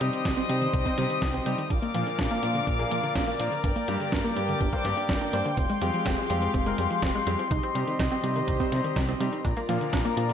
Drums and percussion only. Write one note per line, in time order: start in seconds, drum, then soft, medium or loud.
0.01 closed hi-hat medium
0.13 closed hi-hat soft
0.25 kick loud
0.25 snare loud
0.25 closed hi-hat medium
0.37 closed hi-hat soft
0.49 closed hi-hat medium
0.62 closed hi-hat soft
0.73 kick loud
0.73 closed hi-hat medium
0.86 kick medium
0.86 closed hi-hat soft
0.98 snare soft
0.98 closed hi-hat medium
1.10 closed hi-hat soft
1.22 kick loud
1.22 snare loud
1.22 closed hi-hat medium
1.34 closed hi-hat soft
1.46 closed hi-hat medium
1.58 closed hi-hat soft
1.70 kick loud
1.70 closed hi-hat medium
1.82 closed hi-hat soft
1.94 closed hi-hat medium
2.07 closed hi-hat soft
2.19 kick loud
2.19 snare loud
2.19 closed hi-hat medium
2.31 closed hi-hat soft
2.43 closed hi-hat medium
2.55 closed hi-hat soft
2.67 kick loud
2.67 closed hi-hat medium
2.79 closed hi-hat soft
2.91 closed hi-hat medium
3.03 closed hi-hat soft
3.15 kick loud
3.15 snare loud
3.15 closed hi-hat medium
3.28 closed hi-hat soft
3.40 closed hi-hat medium
3.52 closed hi-hat soft
3.64 kick loud
3.64 closed hi-hat medium
3.76 closed hi-hat soft
3.88 closed hi-hat medium
4.00 closed hi-hat soft
4.12 kick loud
4.12 snare loud
4.12 closed hi-hat medium
4.24 closed hi-hat soft
4.36 closed hi-hat medium
4.49 closed hi-hat soft
4.61 kick loud
4.61 closed hi-hat medium
4.73 kick medium
4.73 closed hi-hat soft
4.85 snare soft
4.85 closed hi-hat medium
4.97 closed hi-hat soft
5.09 kick loud
5.09 snare loud
5.09 closed hi-hat medium
5.21 closed hi-hat soft
5.33 closed hi-hat medium
5.45 closed hi-hat soft
5.57 kick loud
5.57 closed hi-hat medium
5.70 closed hi-hat soft
5.82 closed hi-hat medium
5.94 closed hi-hat soft
6.06 kick loud
6.06 snare loud
6.06 closed hi-hat medium
6.18 closed hi-hat soft
6.30 closed hi-hat medium
6.42 closed hi-hat soft
6.54 kick loud
6.54 closed hi-hat medium
6.66 closed hi-hat soft
6.78 closed hi-hat medium
6.90 closed hi-hat soft
7.03 kick loud
7.03 snare loud
7.03 closed hi-hat medium
7.15 closed hi-hat soft
7.27 closed hi-hat medium
7.39 closed hi-hat soft
7.51 kick loud
7.51 closed hi-hat medium
7.63 closed hi-hat soft
7.75 closed hi-hat medium
7.87 closed hi-hat soft
7.99 kick loud
7.99 snare loud
7.99 closed hi-hat medium
8.12 closed hi-hat soft
8.24 closed hi-hat medium
8.36 closed hi-hat soft
8.48 kick loud
8.48 closed hi-hat medium
8.60 kick medium
8.60 closed hi-hat soft
8.72 snare soft
8.72 closed hi-hat medium
8.84 closed hi-hat soft
8.96 kick loud
8.96 snare loud
8.96 closed hi-hat medium
9.08 closed hi-hat soft
9.21 closed hi-hat medium
9.33 closed hi-hat soft
9.45 kick loud
9.45 closed hi-hat medium
9.57 closed hi-hat soft
9.69 closed hi-hat medium
9.81 closed hi-hat soft
9.93 kick loud
9.93 snare loud
9.93 closed hi-hat medium
10.05 closed hi-hat soft
10.17 closed hi-hat medium
10.29 closed hi-hat soft